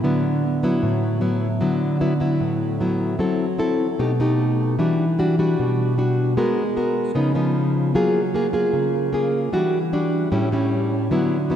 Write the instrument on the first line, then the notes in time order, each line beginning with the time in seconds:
nylon-string guitar
0.04 D3 F#3 B3 E4
0.63 F#3 B3 E4
0.83 A2
1.21 F#3 B3 E4
1.61 D3 F#3 B3 E4
2.01 F#3 B3 E4
2.20 F#3 B3 E4
2.40 A2
2.81 F#3 B3 E4
3.19 F#3 C4 E4 A4
3.58 C4 E4 A4
3.99 B2 A3 D#4 G4
4.20 A3 D#4 G4
4.79 E3 G3 D4 F#4
5.19 G3 D4 F#4
5.39 G3 D4 F#4
5.59 B2
5.98 G3 D4 F#4
6.37 G#3 B3 F#4 A#4
6.76 B3 F#4 A#4
7.15 C#3 F3 B3 D#4
7.35 F3 B3 D#4
7.95 F#3 A#3 F4 G#4
8.34 A#3 F4 G#4
8.53 A#3 F4 G#4
8.73 C#3
9.13 A#3 F4 G#4
9.53 E3 G3 D4 F#4
9.93 G3 D4 F#4
10.32 A2 G3 C#4 E4
10.52 G3 C#4 E4
11.11 D3 F#3 B3 E4
11.50 F#3 B3 E4